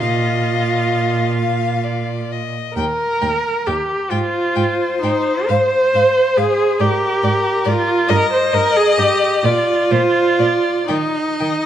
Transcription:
0.00 cello A#2, viola F4, violin D#5 F5
1.37 violin F5
1.84 violin D5
2.32 violin D#5
2.75 cello D#2, viola A#4, violin G5
3.21 cello D#2, violin G5
3.66 cello D#2, viola G4, violin G5
4.10 cello G#2, viola F4, violin C5 G5
4.56 cello G#2, violin G5
5.02 cello G#2, viola D#4, violin G5
5.48 cello G#2, viola C5, violin F5
5.94 cello G#2, violin F5
6.37 cello G#2, viola G#4, violin F5
6.79 cello G#2, viola G4, violin A#4 D5
7.23 cello G#2, violin D5
7.65 cello G#2, viola F4, violin D5
8.08 cello G2, viola A#4, violin D#5
8.33 viola C5
8.52 cello G2, viola A#4, violin D#5
8.76 viola G#4
8.97 cello G2, viola G4, violin D#5
9.44 cello A#2, viola F4, violin D5
9.91 cello A#2, violin C5 D5
10.38 cello A#2, violin D5
10.88 cello D#3, viola D#4, violin D#5 G5
11.39 cello D#3, violin G5

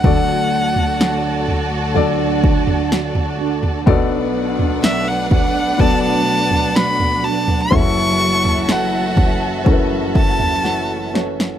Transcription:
Already playing: string section A3, violin F#5
0.04 string section D2 D3 F#4 A4, grand piano D2 D3 F#4 A4 D5, nylon-string guitar D3 F#3 A3 D4 F#4, violin section F#4 D5 A5, kick, floor tom
0.76 floor tom
0.99 nylon-string guitar F#3 A3 D4 F#4, snare
1.48 floor tom
1.94 nylon-string guitar D3 F#3 A3 D4 F#4, grand piano F#4 A4 D5, floor tom
2.44 kick
2.67 floor tom
2.90 nylon-string guitar F#3 A3 D4 F#4, snare
3.15 floor tom
3.39 nylon-string guitar A3 D4 F#4
3.63 floor tom
3.86 grand piano B1 B2 B3 D4 F#4 A4 D5, nylon-string guitar B2 F#3 A3 D4 F#4, string section B2 F#3 D4 D5, violin section D4 B4 F#5, kick, floor tom
4.59 floor tom
4.83 nylon-string guitar F#3 A3 D4 F#4, violin E5, snare
5.08 violin F#5
5.31 nylon-string guitar A3 D4 F#4, violin F#5, kick, floor tom
5.78 nylon-string guitar B2 F#3 A3 D4 F#4, grand piano B3 D4 F#4 A4 D5, violin A5, kick, floor tom
6.03 violin A5
6.51 floor tom
6.75 nylon-string guitar F#3 A3 D4 F#4, violin B5, snare
7.00 floor tom
7.23 nylon-string guitar A3 D4 F#4, violin A5
7.48 floor tom
7.71 grand piano F#1 F#2 C#4 E4 F#4 A4 E5, nylon-string guitar F#2 C#3 E3 A3 C#4 F#4, string section F#2 E4 A4, violin section F#4 E5 A5, violin C#6, kick, floor tom
8.45 floor tom
8.68 nylon-string guitar E3 A3 C#4 F#4, violin F#5, snare
9.16 nylon-string guitar E3 A3 C#4 F#4, kick, floor tom
9.64 nylon-string guitar F#2 C#3 E3 A3 C#4 F#4, grand piano C#4 E4 F#4 A4 A#4, string section F#4, kick, floor tom
9.73 grand piano B4
10.15 violin A5, kick
10.40 floor tom
10.63 nylon-string guitar E3 A3 C#4 F#4, grand piano F#5, snare
11.14 nylon-string guitar E3 A3 C#4 F#4, grand piano C#5, snare
11.40 snare

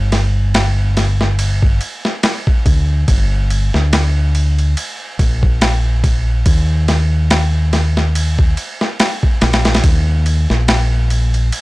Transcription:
Already playing: fingered electric bass G1
0.12 snare, ride
0.54 snare, ride
0.97 snare, ride
1.21 snare
1.39 ride
1.63 kick
1.81 ride
2.05 snare
2.23 snare, ride
2.47 kick
2.66 fingered electric bass D2, kick, ride
3.08 fingered electric bass G1, kick, ride
3.50 ride
3.74 fingered electric bass D2, snare
3.93 snare, ride
4.35 ride
4.58 ride
4.77 ride
5.19 fingered electric bass A#1, kick, ride
5.43 kick
5.61 snare, ride
6.04 kick, ride
6.46 fingered electric bass D#2, kick, ride
6.88 snare, ride
7.30 snare, ride
7.73 snare, ride
7.97 snare
8.15 ride
8.39 kick
8.57 ride
8.81 snare
9.00 snare, ride
9.23 kick
9.41 fingered electric bass A#1, snare, ride
9.53 snare, ride
9.65 snare, ride
9.74 snare, ride
9.84 fingered electric bass D#2, kick, ride
10.26 ride
10.50 fingered electric bass A#1, snare
10.68 snare, ride
11.10 ride
11.34 ride
11.52 ride

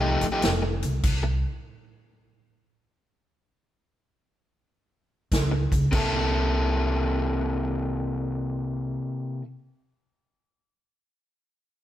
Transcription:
Already playing: upright bass C2
0.01 overdriven electric guitar F3 A3 D#4 G4
0.21 upright bass A1, closed hi-hat
0.32 overdriven electric guitar F3 A3 D#4 G4
0.42 upright bass F1, snare, closed hi-hat
0.62 muted overdriven electric guitar stroke
0.83 upright bass C2, closed hi-hat
1.03 upright bass C2, kick, closed hi-hat, crash
1.23 muted overdriven electric guitar stroke
5.32 upright bass C#2, kick, snare, closed hi-hat
5.51 muted overdriven electric guitar stroke
5.72 upright bass C#2, kick, closed hi-hat
5.91 upright bass C2, overdriven electric guitar C3 A#3 E4 A4, kick, crash

